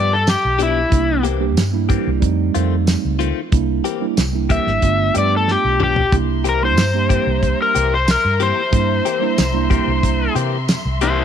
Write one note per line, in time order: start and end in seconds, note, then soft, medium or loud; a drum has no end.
0.00 0.34 G2 loud
0.00 0.15 F3 medium
0.00 0.15 B3 medium
0.00 0.14 D4 medium
0.00 0.14 G4 medium
0.00 0.12 D5 medium
0.13 0.28 A4 medium
0.27 0.60 G4 medium
0.27 snare loud
0.27 closed hi-hat medium
0.27 tambourine loud
0.45 0.83 B1 medium
0.59 0.80 F3 medium
0.59 0.80 B3 medium
0.59 0.79 D4 medium
0.59 0.79 G4 medium
0.59 closed hi-hat medium
0.63 1.24 E4 medium
0.90 1.57 C2 medium
0.90 1.21 G3 medium
0.90 1.22 A#3 medium
0.90 1.22 D4 medium
0.90 1.22 E4 medium
0.90 kick loud
0.90 closed hi-hat medium
1.23 1.45 E3 soft
1.23 1.45 A#3 medium
1.23 1.44 C4 medium
1.23 1.44 G4 medium
1.23 closed hi-hat medium
1.39 1.60 G3 medium
1.39 1.60 A#3 medium
1.39 1.60 D4 medium
1.39 1.61 G4 loud
1.57 1.97 G2 medium
1.57 snare loud
1.57 closed hi-hat medium
1.57 tambourine loud
1.72 2.19 G3 medium
1.72 2.22 A#3 medium
1.72 2.22 D4 medium
1.72 2.22 E4 medium
1.89 2.10 E3 medium
1.89 2.10 A#3 medium
1.89 2.10 C4 medium
1.89 2.09 G4 medium
1.89 kick medium
1.89 closed hi-hat medium
2.07 2.20 C2 medium
2.20 2.49 F2 loud
2.20 3.26 G3 medium
2.20 3.26 A3 medium
2.20 3.26 C4 medium
2.20 3.27 D#4 medium
2.20 kick medium
2.20 closed hi-hat medium
2.55 2.95 F2 medium
2.55 2.75 D#3 medium
2.55 2.75 A3 medium
2.55 2.75 C4 medium
2.55 2.75 F4 medium
2.55 closed hi-hat medium
2.87 snare loud
2.87 closed hi-hat medium
2.87 tambourine loud
3.05 3.31 C#2 medium
3.19 3.40 D#3 medium
3.19 3.40 A3 medium
3.19 3.40 C4 medium
3.19 3.39 F4 medium
3.19 closed hi-hat medium
3.51 3.79 C2 loud
3.51 3.82 G3 medium
3.51 3.82 A#3 medium
3.51 3.83 D4 medium
3.51 3.83 E4 medium
3.51 kick loud
3.51 closed hi-hat medium
3.84 4.05 E3 medium
3.84 4.05 A#3 medium
3.84 4.05 C4 medium
3.84 4.05 G4 medium
3.84 closed hi-hat medium
4.00 4.21 G3 medium
4.00 4.21 A#3 medium
4.00 4.21 D4 medium
4.00 4.21 E4 medium
4.17 4.57 C2 medium
4.17 snare loud
4.17 closed hi-hat medium
4.17 tambourine loud
4.32 4.82 G3 medium
4.32 4.82 A#3 medium
4.32 4.82 D4 medium
4.32 4.83 E4 medium
4.49 4.70 E3 medium
4.49 4.70 A#3 medium
4.49 4.70 C4 medium
4.49 4.70 G4 medium
4.49 5.14 E5 medium
4.49 kick medium
4.49 closed hi-hat medium
4.67 4.80 G#1 medium
4.67 snare soft
4.81 5.09 G1 loud
4.81 5.86 A3 medium
4.81 5.87 B3 medium
4.81 5.87 D4 medium
4.81 5.87 F4 medium
4.81 kick medium
4.81 closed hi-hat medium
5.14 5.55 G2 medium
5.14 5.36 F3 soft
5.14 5.35 B3 medium
5.14 5.35 D4 medium
5.14 5.35 G4 medium
5.14 5.33 D5 medium
5.14 closed hi-hat medium
5.37 5.50 A4 medium
5.48 5.81 G4 medium
5.48 snare medium
5.65 6.03 B1 medium
5.80 6.01 F3 medium
5.80 6.01 B3 medium
5.80 6.00 D4 medium
5.80 6.00 G4 medium
5.80 6.13 G4 medium
5.80 mid tom medium
5.96 floor tom medium
6.11 6.77 C2 loud
6.11 6.43 G3 medium
6.11 6.43 A#3 medium
6.11 6.43 D4 medium
6.11 6.44 E4 medium
6.11 11.25 E5 medium
6.11 11.25 A#5 medium
6.11 11.25 C6 medium
6.11 kick loud
6.11 closed hi-hat medium
6.44 6.66 E3 medium
6.44 6.65 A#3 medium
6.44 6.65 C4 medium
6.44 6.65 G4 medium
6.44 closed hi-hat medium
6.49 6.63 A#4 medium
6.62 6.82 G3 medium
6.62 6.82 A#3 medium
6.62 6.82 D4 medium
6.62 6.83 E4 medium
6.62 7.58 C5 medium
6.77 7.17 G2 medium
6.77 snare loud
6.77 closed hi-hat medium
6.77 tambourine loud
6.93 7.74 G3 medium
6.93 7.74 A#3 medium
6.93 7.74 D4 medium
6.93 7.75 G4 medium
7.09 7.31 E3 soft
7.09 7.30 A#3 medium
7.09 7.30 C4 medium
7.09 7.30 G4 medium
7.09 kick medium
7.09 closed hi-hat medium
7.27 7.53 C2 medium
7.43 kick medium
7.43 closed hi-hat medium
7.62 7.93 A#4 medium
7.75 8.15 C2 medium
7.75 7.96 E3 soft
7.75 7.96 A#3 medium
7.75 7.95 C4 medium
7.75 7.95 G4 medium
7.75 closed hi-hat medium
7.94 8.09 C5 medium
8.08 8.41 A#4 medium
8.08 snare loud
8.08 closed hi-hat medium
8.08 tambourine loud
8.25 8.51 G2 medium
8.40 8.61 E3 medium
8.40 8.61 A#3 medium
8.40 8.61 C4 medium
8.40 8.60 G4 medium
8.40 10.33 C5 medium
8.40 closed hi-hat medium
8.71 8.99 G2 loud
8.71 9.03 G3 medium
8.71 9.03 A#3 medium
8.71 9.03 D4 medium
8.71 9.04 E4 medium
8.71 kick loud
8.71 closed hi-hat medium
9.05 9.26 E3 medium
9.05 9.26 A#3 medium
9.05 9.26 C4 medium
9.05 9.25 G4 medium
9.05 closed hi-hat medium
9.20 9.41 G3 medium
9.20 9.41 A#3 medium
9.20 9.42 D4 medium
9.20 9.42 E4 medium
9.38 9.78 C2 medium
9.38 snare loud
9.38 closed hi-hat medium
9.38 tambourine loud
9.52 10.34 G3 medium
9.52 10.34 A#3 medium
9.52 10.34 D4 medium
9.52 10.35 E4 loud
9.70 9.91 E3 medium
9.70 9.91 A#3 medium
9.70 9.91 C4 medium
9.70 9.90 G4 medium
9.70 kick medium
9.70 closed hi-hat medium
9.87 10.26 C2 medium
10.03 kick medium
10.03 closed hi-hat medium
10.35 10.75 C3 loud
10.35 10.57 E3 medium
10.35 10.57 A#3 medium
10.35 10.56 C4 medium
10.35 10.56 G4 medium
10.35 closed hi-hat medium
10.68 snare loud
10.68 closed hi-hat medium
10.68 tambourine medium
10.85 11.24 C2 medium
11.01 11.22 E3 medium
11.01 11.22 A#3 medium
11.01 11.22 C4 medium
11.01 11.25 E4 medium
11.01 11.21 G4 medium
11.01 11.25 C5 medium
11.01 closed hi-hat medium